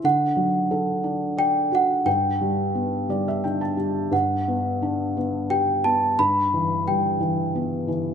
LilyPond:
<<
  \new Staff \with { instrumentName = "Celesta" } { \time 3/4 \key g \major \tempo 4 = 88 fis''2 g''8 fis''8 | g''2~ g''8 r8 | fis''2 g''8 a''8 | b''4 g''4 r4 | }
  \new Staff \with { instrumentName = "Felt piano" } { \time 3/4 \key g \major r2. | r4. d''16 e''16 g''16 a''8. | r2. | r2. | }
  \new Staff \with { instrumentName = "Felt piano" } { \time 3/4 \key g \major d8 fis8 a'8 d'8 d''8 fis'8 | g,8 g8 b8 g8 d'8 g8 | g,8 b8 d'8 b8 g'8 b8 | g,8 e8 g8 e8 b8 e8 | }
>>